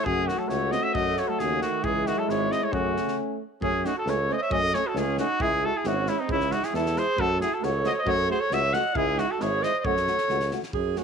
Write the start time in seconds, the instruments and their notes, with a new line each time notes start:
0.04 tuba F#2, alto saxophone C#3, trombone A3, euphonium F#4, trumpet G#4, kick
0.27 alto saxophone D#3, trumpet F#4, snare
0.38 alto saxophone F#3, trumpet A4
0.48 tuba C#2, alto saxophone A3, trumpet C#5, snare
0.71 alto saxophone C4, trumpet D#5, snare
0.82 alto saxophone C#4, trumpet E5
0.93 tuba F#2, alto saxophone A3, trumpet D#5, kick
1.17 alto saxophone A3, trumpet C#5, snare
1.28 alto saxophone F#3, trumpet A4
1.39 tuba D#2, alto saxophone C#3, trumpet G#4, snare
1.62 alto saxophone D#3, trumpet F#4, snare
1.83 tuba C#2, alto saxophone E3, trombone G#3, euphonium E4, trumpet G#4, kick
2.07 alto saxophone D#3, trumpet F#4, snare
2.17 alto saxophone F#3, trumpet A4
2.27 tuba G#1, alto saxophone G#3, trumpet C#5, snare
2.50 alto saxophone C4, trumpet D#5, snare
2.62 alto saxophone A3, trumpet C#5
2.72 tuba F#2, alto saxophone C#3, trombone A3, euphonium C#4, trumpet F#4, kick
2.97 snare
3.08 snare
3.61 tuba F#2, trombone A3, euphonium C#4, alto saxophone C#4, trumpet G#4, kick
3.84 trombone A3, euphonium C#4, alto saxophone D#4, trumpet F#4, snare
3.96 alto saxophone F#4, trumpet A4
4.06 tuba C#2, trombone A3, euphonium C#4, alto saxophone A4, trumpet C#5, snare
4.29 trombone A3, euphonium C#4, alto saxophone A4 C5, trumpet D#5
4.37 alto saxophone C5, trumpet D#5
4.42 alto saxophone C#5, trumpet E5
4.51 tuba F#2, trombone A3, euphonium C#4, alto saxophone A4, trumpet D#5, kick
4.73 trombone A3, euphonium C#4, alto saxophone A4, trumpet C#5, snare
4.86 alto saxophone F#4, trumpet A4
4.95 tuba C#2, trombone A3, euphonium C#4, alto saxophone C#4, trumpet G#4, snare
5.17 trombone A3, euphonium C#4, alto saxophone D#4, trumpet F#4, snare
5.40 tuba C#2, trombone G#3, alto saxophone E4, euphonium E4, trumpet G#4, kick
5.62 trombone G#3, euphonium E4, alto saxophone F#4, trumpet A4
5.75 alto saxophone E4, trumpet G#4
5.84 tuba G#1, trombone G#3, alto saxophone C#4, euphonium E4, trumpet F#4, snare
6.06 trombone G#3, alto saxophone C#4, trumpet E4, euphonium E4, snare
6.19 alto saxophone C4, trumpet D#4
6.27 tuba C#2, trombone G#3, trumpet E4, euphonium E4, kick
6.33 alto saxophone C#4
6.40 snare
6.50 trombone G#3, euphonium E4, trumpet F#4, snare
6.55 alto saxophone D#4
6.63 alto saxophone E4, trumpet G#4, snare
6.72 tuba E2, trombone G#3, euphonium E4, trumpet A4, snare
6.77 alto saxophone E4
6.86 snare
6.95 trombone G#3, euphonium E4, trumpet C5, snare
6.99 alto saxophone G#4
7.16 tuba F#2, trombone A3, alto saxophone F#4, euphonium F#4, trumpet A4, kick
7.39 trombone A3, euphonium F#4, trumpet G#4, snare
7.43 alto saxophone E4
7.54 alto saxophone F#4, trumpet A4
7.60 tuba C#2, trombone A3, euphonium F#4, trumpet C#5, snare
7.65 alto saxophone A4
7.83 trombone A3, euphonium F#4, alto saxophone C5, trumpet D#5, snare
7.90 alto saxophone A4, trumpet C#5
7.98 alto saxophone C5, trumpet D#5
8.05 tuba F#2, trombone A3, euphonium F#4, alto saxophone A4, trumpet C#5, kick
8.29 trombone A3, euphonium F#4, alto saxophone G#4, trumpet C5
8.40 alto saxophone A4, trumpet C#5
8.51 tuba C#2, trombone A3, euphonium F#4, alto saxophone C#5, trumpet E5, snare
8.73 trombone A3, euphonium F#4, alto saxophone D#5, trumpet F#5, snare
8.94 tuba C#2, trombone G#3, alto saxophone E4, euphonium E4, trumpet G#4, kick
9.15 trombone G#3, alto saxophone D#4, euphonium E4, trumpet F#4, snare
9.29 alto saxophone F#4, trumpet A4
9.39 tuba G#1, trombone G#3, euphonium E4, alto saxophone G#4, trumpet C#5, snare
9.62 trombone G#3, euphonium E4, alto saxophone C5, trumpet D#5, snare
9.77 alto saxophone C5, trumpet D#5
9.84 tuba F#2, trombone A3, euphonium F#4, alto saxophone A4, trumpet C#5, kick
9.97 snare
10.07 trombone A3, euphonium F#4, snare
10.18 snare
10.28 tuba C#2, trombone A3, euphonium F#4, snare
10.40 snare
10.51 trombone A3, euphonium F#4, snare
10.63 snare
10.73 tuba F#2, alto saxophone G#4, kick
10.95 trombone A3, euphonium C#4, alto saxophone F#4, snare